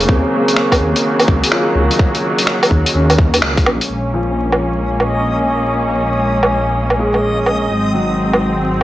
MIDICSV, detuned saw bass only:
0, 0, Header, 1, 2, 480
1, 0, Start_track
1, 0, Key_signature, -5, "minor"
1, 0, Tempo, 476190
1, 86, Time_signature, 4, 2, 24, 8
1, 8901, End_track
2, 0, Start_track
2, 0, Title_t, "Detuned saw bass"
2, 0, Program_c, 0, 39
2, 89, Note_on_c, 0, 39, 101
2, 230, Note_off_c, 0, 39, 0
2, 805, Note_on_c, 0, 39, 91
2, 947, Note_off_c, 0, 39, 0
2, 1292, Note_on_c, 0, 37, 92
2, 1431, Note_off_c, 0, 37, 0
2, 1767, Note_on_c, 0, 37, 94
2, 1909, Note_off_c, 0, 37, 0
2, 2730, Note_on_c, 0, 39, 92
2, 2870, Note_off_c, 0, 39, 0
2, 2972, Note_on_c, 0, 39, 92
2, 3438, Note_off_c, 0, 39, 0
2, 3455, Note_on_c, 0, 37, 91
2, 3688, Note_on_c, 0, 34, 91
2, 3703, Note_off_c, 0, 37, 0
2, 3829, Note_off_c, 0, 34, 0
2, 3928, Note_on_c, 0, 34, 85
2, 7750, Note_off_c, 0, 34, 0
2, 7767, Note_on_c, 0, 32, 84
2, 8901, Note_off_c, 0, 32, 0
2, 8901, End_track
0, 0, End_of_file